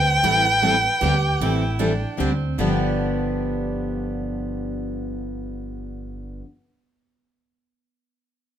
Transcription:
0.00 0.15 D2 medium
0.00 0.23 C5 medium
0.00 2.22 G5 loud
0.23 0.86 A1 medium
0.23 0.45 E3 medium
0.23 0.45 G3 medium
0.23 0.45 C4 medium
0.23 0.45 E4 medium
0.23 0.45 A4 medium
0.23 1.01 B4 medium
0.63 0.74 E3 medium
0.63 0.74 G3 medium
0.63 0.74 C4 medium
0.63 0.74 E4 medium
0.63 0.74 A4 medium
1.02 1.33 D2 medium
1.02 1.14 D3 medium
1.02 1.14 G3 medium
1.02 1.14 C4 medium
1.02 1.14 D4 medium
1.02 1.14 G4 medium
1.41 2.04 A1 medium
1.41 1.63 E3 medium
1.41 1.63 G3 medium
1.41 1.63 C4 medium
1.41 1.63 E4 medium
1.41 1.63 A4 medium
1.79 1.91 E3 medium
1.79 1.92 G3 medium
1.79 1.92 C4 medium
1.79 2.20 D4 medium
1.79 1.91 E4 medium
1.79 1.92 A4 medium
2.17 2.51 D2 medium
2.17 2.30 D3 medium
2.17 2.30 G3 medium
2.17 2.30 C4 medium
2.17 2.30 D4 medium
2.17 2.30 G4 medium
2.58 6.40 G1 medium
2.58 6.44 G2 medium
2.58 6.44 D3 medium
2.58 6.44 F3 medium
2.58 6.45 B3 medium
2.58 6.45 D4 medium
2.58 6.45 G4 medium

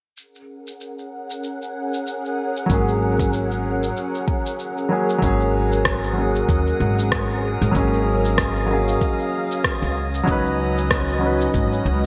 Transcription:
0.17 5.19 C#4 medium
0.17 4.87 G#4 medium
0.17 4.87 A#4 medium
0.17 5.19 F#5 medium
0.17 shaker soft
0.36 shaker soft
0.67 shaker medium
0.81 shaker soft
0.99 shaker soft
1.30 shaker medium
1.44 shaker soft
1.62 shaker soft
1.94 shaker medium
2.07 shaker medium
2.25 shaker soft
2.57 shaker medium
2.66 3.89 G#1 medium
2.66 4.84 F#3 medium
2.66 4.85 A#3 medium
2.66 kick loud
2.66 shaker medium
2.71 4.86 C#4 medium
2.71 4.88 G#4 medium
2.88 shaker soft
3.19 kick loud
3.19 shaker medium
3.33 shaker medium
3.51 shaker soft
3.83 shaker medium
3.97 shaker medium
4.15 shaker soft
4.28 kick medium
4.46 shaker medium
4.59 shaker medium
4.78 shaker soft
4.89 5.16 F#3 medium
4.89 5.17 A#3 medium
4.89 5.17 C#4 medium
4.89 5.18 G#4 medium
5.09 shaker medium
5.18 6.41 G#1 medium
5.18 6.12 F#3 medium
5.18 6.13 A#3 medium
5.22 12.06 C#4 medium
5.22 6.15 C#4 medium
5.22 9.92 G#4 medium
5.22 6.16 G#4 loud
5.22 9.92 A#4 medium
5.22 12.06 D#5 medium
5.22 7.73 F#5 medium
5.22 12.06 D#6 medium
5.22 kick loud
5.22 shaker medium
5.40 shaker soft
5.72 shaker medium
5.85 kick medium
5.85 cross-stick loud
5.85 shaker soft
6.04 shaker soft
6.13 7.70 F#3 medium
6.13 7.71 A#3 medium
6.18 7.72 C#4 medium
6.18 7.74 G#4 medium
6.35 shaker medium
6.49 6.71 D#2 medium
6.49 kick loud
6.49 shaker soft
6.67 shaker soft
6.80 7.51 G#1 loud
6.99 shaker medium
7.12 kick medium
7.12 cross-stick medium
7.12 shaker medium
7.30 shaker soft
7.61 7.70 G#1 loud
7.61 shaker medium
7.71 8.94 G#1 medium
7.71 8.64 F#3 medium
7.71 8.66 A#3 medium
7.71 9.94 F5 medium
7.71 kick medium
7.71 shaker medium
7.76 8.67 C#4 medium
7.76 8.69 G#4 loud
7.93 shaker soft
8.25 shaker medium
8.38 kick loud
8.38 cross-stick loud
8.38 shaker medium
8.56 shaker soft
8.66 9.93 F#3 medium
8.66 9.94 A#3 medium
8.71 9.95 C#4 medium
8.71 9.96 G#4 medium
8.88 shaker medium
9.01 kick loud
9.01 shaker medium
9.20 shaker soft
9.51 shaker medium
9.64 kick loud
9.64 cross-stick loud
9.64 shaker medium
9.82 10.20 C#2 medium
9.82 shaker soft
9.96 12.06 F#4 medium
9.96 12.06 B4 medium
9.96 12.06 D#5 medium
10.14 shaker medium
10.23 11.17 F#3 medium
10.23 11.19 C#4 medium
10.28 11.46 C#2 medium
10.28 11.20 D#4 medium
10.28 11.21 B4 loud
10.28 kick loud
10.28 shaker medium
10.46 shaker soft
10.78 shaker medium
10.91 kick loud
10.91 cross-stick loud
10.91 shaker medium
11.09 shaker soft
11.19 12.06 F#3 medium
11.19 12.06 C#4 medium
11.24 12.06 D#4 medium
11.24 12.06 B4 medium
11.41 shaker medium
11.54 11.76 G#1 medium
11.54 kick loud
11.54 shaker medium
11.73 shaker soft
11.85 12.06 C#2 loud

